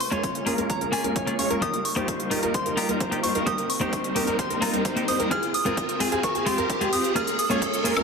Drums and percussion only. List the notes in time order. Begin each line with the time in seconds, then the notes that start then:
0.00 open hi-hat
0.12 closed hi-hat
0.23 kick, closed hi-hat
0.35 closed hi-hat
0.47 open hi-hat
0.58 closed hi-hat
0.70 kick, closed hi-hat
0.81 closed hi-hat
0.93 open hi-hat
1.04 closed hi-hat
1.16 kick, closed hi-hat
1.27 closed hi-hat
1.39 open hi-hat
1.50 closed hi-hat
1.62 kick, closed hi-hat
1.74 closed hi-hat
1.85 open hi-hat
1.97 closed hi-hat
2.08 kick, closed hi-hat
2.20 closed hi-hat
2.31 open hi-hat
2.43 closed hi-hat
2.54 kick, closed hi-hat
2.66 closed hi-hat
2.77 open hi-hat
2.89 closed hi-hat
3.00 kick, closed hi-hat
3.12 closed hi-hat
3.24 open hi-hat
3.35 closed hi-hat
3.47 kick, closed hi-hat
3.58 closed hi-hat
3.70 open hi-hat
3.81 closed hi-hat
3.93 kick, closed hi-hat
4.04 closed hi-hat
4.16 open hi-hat
4.27 closed hi-hat
4.39 kick, closed hi-hat
4.50 closed hi-hat
4.62 open hi-hat
4.74 closed hi-hat
4.85 kick, closed hi-hat
4.97 closed hi-hat
5.08 open hi-hat
5.20 closed hi-hat
5.31 kick, closed hi-hat
5.43 closed hi-hat
5.54 open hi-hat
5.66 closed hi-hat
5.77 kick, closed hi-hat
5.89 closed hi-hat
6.00 open hi-hat
6.12 closed hi-hat
6.23 kick, closed hi-hat
6.35 closed hi-hat
6.47 open hi-hat
6.58 closed hi-hat
6.70 kick, closed hi-hat
6.81 closed hi-hat
6.93 open hi-hat
7.04 closed hi-hat
7.16 kick, closed hi-hat, cabasa
7.27 closed hi-hat, cabasa
7.39 open hi-hat, cabasa
7.50 closed hi-hat, cabasa
7.62 kick, closed hi-hat, cabasa
7.73 closed hi-hat, cabasa
7.85 open hi-hat, cabasa
7.97 closed hi-hat, cabasa, high woodblock